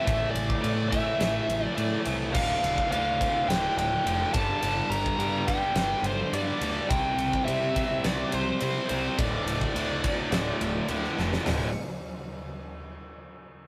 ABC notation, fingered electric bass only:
X:1
M:4/4
L:1/8
Q:1/4=105
K:Dm
V:1 name="Fingered electric bass" clef=bass
A,,, A,,, A,,2 A,,, A,,, A,, C,, | D,,, D,,, D,,2 D,,, D,,, F,,, G,,, | G,,, G,,, G,,2 G,,, G,,, G,, D,, | C,, C,, C,2 C,, C,, C, C,, |
D,,, D,,, D,,2 D,,, D,,, D,, F,,, | D,,, z6 z |]